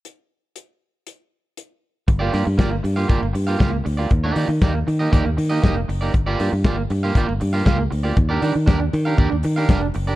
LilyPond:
<<
  \new Staff \with { instrumentName = "Clean electric guitar" } { \time 4/4 \key g \minor \tempo 4 = 118 r1 | r16 <bes f' g' d''>16 <bes f' g' d''>16 r16 <bes f' g' d''>16 r8 <bes f' g' f''>16 <bes f' g' d''>16 r8 <bes f' g' f''>16 <bes f' g' f''>16 r8 <bes f' g' d''>16 | r16 <bes ees' g' d''>16 <bes ees' g' d''>16 r16 <bes ees' g' d''>16 r8 <bes ees' g' ees''>16 <bes ees' g' d''>16 r8 <bes ees' g' ees''>16 <bes ees' g' ees''>16 r8 <bes ees' g' d''>16 | r16 <bes f' g' d''>16 <bes f' g' d''>16 r16 <bes f' g' d''>16 r8 <bes f' g' f''>16 <bes f' g' d''>16 r8 <bes f' g' f''>16 <bes f' g' f''>16 r8 <bes f' g' d''>16 |
r16 <d' g' bes' d''>16 <d' g' bes' d''>16 r16 <d' g' bes' d''>16 r8 <d' g' bes' f''>16 <d' g' bes' d''>16 r8 <d' g' bes' f''>16 <d' g' bes' f''>16 r8 <d' g' bes' d''>16 | }
  \new Staff \with { instrumentName = "Fingered electric bass" } { \clef bass \time 4/4 \key g \minor r1 | g,,8 g,16 g,16 g,,8 g,8 g,,16 g,,16 g,8 cis,8 d,8 | ees,8 ees16 ees16 ees,8 ees8 ees,16 ees,16 ees8 f,,8 fis,,8 | g,,8 g,16 g,16 g,,8 g,8 g,,16 g,,16 g,8 cis,8 d,8 |
ees,8 ees16 ees16 ees,8 ees8 ees,16 ees,16 ees8 f,,8 fis,,8 | }
  \new DrumStaff \with { instrumentName = "Drums" } \drummode { \time 4/4 hh4 hh4 hh4 hh4 | <hh bd>8 hho8 <hh bd sn>8 hho8 <hh bd>8 hho8 <hh bd sn>8 hho8 | <hh bd>8 hho8 <hh bd sn>8 hho8 <hh bd>8 hho8 <hh bd sn>8 hho8 | <hh bd>8 hho8 <hh bd sn>8 hho8 <hh bd>8 hho8 <hh bd sn>8 hho8 |
<hh bd>8 hho8 <hh bd sn>8 hho8 <hh bd>8 hho8 <hh bd sn>8 hho8 | }
>>